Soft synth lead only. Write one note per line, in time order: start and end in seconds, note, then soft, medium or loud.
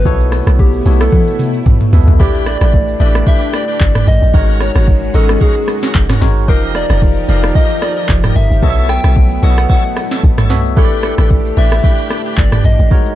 0.00 0.61 B4 loud
0.60 1.03 G4 loud
1.01 1.81 A4 medium
2.20 2.49 G4 loud
2.47 3.00 D5 loud
3.01 3.29 D5 loud
3.28 3.56 E5 loud
3.55 4.09 D5 loud
4.08 4.63 D#5 loud
4.62 5.17 C#5 loud
5.15 5.43 A4 medium
5.42 5.95 G#4 medium
6.49 6.61 A#4 medium
6.76 7.25 D5 loud
7.29 7.57 D5 medium
7.56 7.84 D#5 loud
7.83 8.37 D5 loud
8.36 8.91 E5 loud
8.89 9.45 G5 loud
9.44 9.70 F#5 loud
9.71 10.20 F#5 loud
10.78 11.02 A4 loud
11.05 11.60 A4 loud
11.58 12.40 E5 loud
12.39 12.67 D5 loud
12.65 13.15 D#5 loud